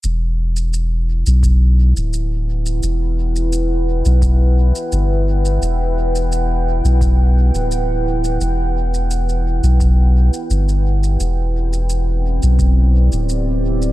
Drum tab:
SH |x--xx--xx--xx--x|x--xx--xx--xx--x|x--xx--xx--xx--x|x--xxx-xx--xxx-x|
BD |--------o-------|--------o-------|--------o-------|--------o-------|

SH |x--xx--xx--xx--x|
BD |--------o-------|